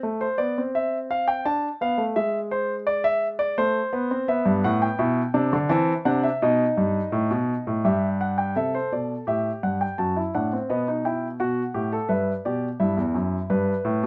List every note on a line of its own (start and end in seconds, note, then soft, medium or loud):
0.03 0.25 A3 medium
0.21 0.38 C5 medium
0.38 0.56 B3 medium
0.38 0.60 D5 medium
0.58 1.44 C4 medium
0.75 0.97 E5 medium
1.11 1.27 F5 medium
1.28 1.45 G5 medium
1.45 1.67 D4 medium
1.45 1.67 A5 medium
1.81 1.98 B3 medium
1.81 2.03 F5 medium
1.98 2.15 A3 medium
2.16 3.54 G#3 medium
2.16 2.38 E5 medium
2.51 2.73 C5 medium
2.87 3.04 D5 medium
3.04 3.26 E5 medium
3.39 3.57 D5 medium
3.58 3.80 A3 medium
3.58 4.26 C5 medium
3.93 4.10 B3 medium
4.11 4.28 C4 medium
4.28 4.97 B3 medium
4.28 4.50 E5 medium
4.46 4.63 G2 medium
4.64 4.86 A2 medium
4.64 4.81 F#5 medium
4.82 5.68 G5 medium
4.99 5.21 B2 medium
4.99 5.21 E4 medium
5.34 5.51 C3 medium
5.34 5.56 D4 medium
5.53 5.70 D3 medium
5.69 5.92 E3 medium
5.69 5.92 C4 medium
5.69 5.92 A5 medium
6.05 6.27 C3 medium
6.05 6.27 D4 medium
6.05 6.23 F#5 medium
6.23 6.41 E5 medium
6.42 6.64 B2 medium
6.42 7.80 D#4 medium
6.42 7.80 D#5 medium
6.77 6.99 G2 medium
7.12 7.29 A2 medium
7.31 7.53 B2 medium
7.67 7.84 A2 medium
7.85 8.54 G2 medium
7.85 8.53 G4 medium
7.85 8.07 E5 medium
8.21 8.37 F#5 medium
8.38 8.55 G5 medium
8.56 8.78 C3 medium
8.56 9.25 A4 medium
8.56 8.73 E5 medium
8.75 8.91 C5 medium
8.92 9.14 B2 medium
8.92 9.14 D5 medium
9.27 9.49 A2 medium
9.27 9.96 G4 medium
9.27 9.49 E5 medium
9.63 9.85 G2 medium
9.63 9.80 F#5 medium
9.81 9.98 G5 medium
9.98 10.20 F#2 medium
9.98 10.16 F#4 medium
9.98 10.20 A5 medium
10.16 10.33 E4 medium
10.35 10.56 A2 medium
10.35 10.51 D4 medium
10.35 10.56 F#5 medium
10.53 10.69 C4 medium
10.69 11.38 B2 medium
10.69 10.86 B3 medium
10.69 10.91 D#5 medium
10.88 11.04 D#4 medium
11.05 11.27 E4 medium
11.05 11.27 G5 medium
11.40 11.62 B2 medium
11.40 11.62 F#4 medium
11.40 12.08 F#5 medium
11.74 11.96 A2 medium
11.74 11.92 G4 medium
11.93 12.10 A4 medium
12.09 12.31 G2 medium
12.09 12.31 B4 medium
12.09 12.31 E5 medium
12.45 12.68 B2 medium
12.45 12.68 G4 medium
12.45 12.67 D5 medium
12.80 12.97 G2 medium
12.80 13.49 E4 medium
12.80 14.07 E5 medium
12.97 13.15 E2 medium
13.15 13.37 F#2 medium
13.50 13.72 G2 medium
13.50 14.07 B4 medium
13.85 14.02 A2 medium
14.03 14.07 B2 medium